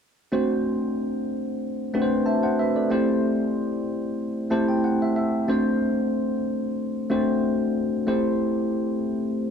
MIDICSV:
0, 0, Header, 1, 2, 480
1, 0, Start_track
1, 0, Tempo, 645856
1, 241, Time_signature, 4, 2, 24, 8
1, 7063, End_track
2, 0, Start_track
2, 0, Title_t, "Tine electric piano"
2, 0, Program_c, 0, 4
2, 236, Note_on_c, 0, 60, 64
2, 238, Note_on_c, 0, 57, 70
2, 241, Note_on_c, 0, 62, 66
2, 242, Note_on_c, 0, 66, 68
2, 246, Note_on_c, 0, 72, 83
2, 362, Control_c, 0, 64, 127
2, 895, Note_off_c, 0, 57, 0
2, 895, Note_off_c, 0, 60, 0
2, 897, Note_off_c, 0, 62, 0
2, 897, Note_off_c, 0, 66, 0
2, 900, Note_off_c, 0, 72, 0
2, 1440, Note_on_c, 0, 57, 67
2, 1442, Note_on_c, 0, 60, 68
2, 1442, Note_on_c, 0, 62, 67
2, 1447, Note_on_c, 0, 71, 64
2, 1448, Note_on_c, 0, 66, 67
2, 1496, Note_off_c, 0, 71, 0
2, 1499, Note_on_c, 0, 72, 80
2, 1678, Note_on_c, 0, 81, 59
2, 1681, Note_on_c, 0, 76, 48
2, 1710, Note_off_c, 0, 72, 0
2, 1802, Note_off_c, 0, 81, 0
2, 1804, Note_off_c, 0, 76, 0
2, 1807, Note_on_c, 0, 78, 63
2, 1808, Note_on_c, 0, 72, 53
2, 1913, Note_off_c, 0, 78, 0
2, 1914, Note_off_c, 0, 72, 0
2, 1928, Note_on_c, 0, 76, 62
2, 1929, Note_off_c, 0, 57, 0
2, 1930, Note_off_c, 0, 60, 0
2, 1930, Note_off_c, 0, 62, 0
2, 1933, Note_off_c, 0, 66, 0
2, 1933, Note_on_c, 0, 71, 49
2, 2048, Note_off_c, 0, 76, 0
2, 2050, Note_off_c, 0, 71, 0
2, 2053, Note_on_c, 0, 74, 57
2, 2057, Note_on_c, 0, 69, 46
2, 2156, Note_on_c, 0, 57, 71
2, 2159, Note_on_c, 0, 60, 68
2, 2165, Note_on_c, 0, 64, 66
2, 2166, Note_on_c, 0, 67, 68
2, 2169, Note_on_c, 0, 72, 83
2, 2170, Control_c, 0, 64, 0
2, 2280, Note_off_c, 0, 74, 0
2, 2282, Note_off_c, 0, 69, 0
2, 2297, Control_c, 0, 64, 127
2, 2814, Note_off_c, 0, 57, 0
2, 2816, Note_off_c, 0, 60, 0
2, 2819, Note_off_c, 0, 64, 0
2, 2819, Note_off_c, 0, 67, 0
2, 2821, Note_off_c, 0, 72, 0
2, 3349, Note_on_c, 0, 57, 78
2, 3351, Note_on_c, 0, 60, 65
2, 3352, Note_on_c, 0, 64, 71
2, 3352, Note_on_c, 0, 81, 63
2, 3356, Note_on_c, 0, 67, 64
2, 3357, Note_on_c, 0, 72, 78
2, 3476, Note_off_c, 0, 81, 0
2, 3482, Note_on_c, 0, 79, 60
2, 3588, Note_off_c, 0, 79, 0
2, 3598, Note_on_c, 0, 78, 61
2, 3720, Note_off_c, 0, 78, 0
2, 3732, Note_on_c, 0, 76, 61
2, 3828, Note_off_c, 0, 76, 0
2, 3837, Note_on_c, 0, 76, 61
2, 3843, Note_off_c, 0, 57, 0
2, 3844, Note_off_c, 0, 60, 0
2, 3845, Note_off_c, 0, 64, 0
2, 3847, Note_off_c, 0, 67, 0
2, 3848, Note_off_c, 0, 72, 0
2, 4062, Note_off_c, 0, 76, 0
2, 4075, Note_on_c, 0, 57, 70
2, 4075, Note_on_c, 0, 60, 69
2, 4078, Note_on_c, 0, 62, 65
2, 4078, Note_on_c, 0, 66, 65
2, 4084, Note_on_c, 0, 72, 82
2, 4090, Control_c, 0, 64, 0
2, 4219, Control_c, 0, 64, 127
2, 4734, Note_off_c, 0, 57, 0
2, 4734, Note_off_c, 0, 60, 0
2, 4735, Note_off_c, 0, 62, 0
2, 4736, Note_off_c, 0, 66, 0
2, 4739, Note_off_c, 0, 72, 0
2, 5276, Note_on_c, 0, 57, 79
2, 5279, Note_on_c, 0, 60, 67
2, 5280, Note_on_c, 0, 62, 67
2, 5281, Note_on_c, 0, 66, 70
2, 5287, Note_on_c, 0, 72, 81
2, 5767, Note_off_c, 0, 57, 0
2, 5768, Note_off_c, 0, 60, 0
2, 5769, Note_off_c, 0, 62, 0
2, 5770, Note_off_c, 0, 66, 0
2, 5773, Note_off_c, 0, 72, 0
2, 5997, Note_on_c, 0, 57, 74
2, 6002, Note_on_c, 0, 60, 65
2, 6004, Note_on_c, 0, 64, 67
2, 6004, Note_on_c, 0, 67, 65
2, 6005, Note_on_c, 0, 72, 77
2, 6009, Control_c, 0, 64, 0
2, 6155, Control_c, 0, 64, 127
2, 6655, Note_off_c, 0, 57, 0
2, 6658, Note_off_c, 0, 60, 0
2, 6658, Note_off_c, 0, 64, 0
2, 6659, Note_off_c, 0, 67, 0
2, 6659, Note_off_c, 0, 72, 0
2, 7063, End_track
0, 0, End_of_file